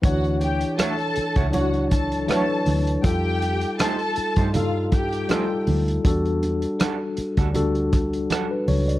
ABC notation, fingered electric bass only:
X:1
M:4/4
L:1/16
Q:"Swing 16ths" 1/4=80
K:D
V:1 name="Fingered electric bass" clef=bass
D,,4 z3 C,,4- C,, z2 D,,2 | =F,,4 z3 G,,4- G,, z2 D,,2 | E,,4 z3 D,,4- D,, z2 C,,2 |]